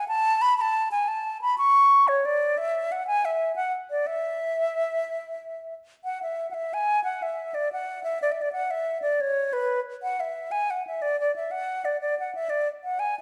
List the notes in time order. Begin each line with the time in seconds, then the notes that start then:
0.08 A5
0.42 B5
0.58 A5 B5
0.92 G#5
1.08 A5
1.42 B5
1.58 C#6
2.08 C#5
2.25 D5
2.58 E5
2.92 F#5
3.07 G#5
3.25 E5
3.56 F#5
3.90 D5
4.07 E5
6.04 F#5
6.23 E5
6.51 E5 F#5
6.74 G#5
7.04 F#5
7.22 E5
7.54 D5
7.72 F#5
8.04 E5
8.22 D5
8.32 E5
8.41 D5
8.52 F#5
8.71 E5
9.02 D5
9.21 C#5
9.53 B4
10.02 F#5
10.20 E5
10.51 G#5
10.70 F#5
10.87 E5
11.02 D5
11.20 D5
11.36 E5
11.51 F#5
11.85 D5
12.01 D5
12.19 F#5
12.35 E5
12.50 D5
12.84 F#5
12.99 G#5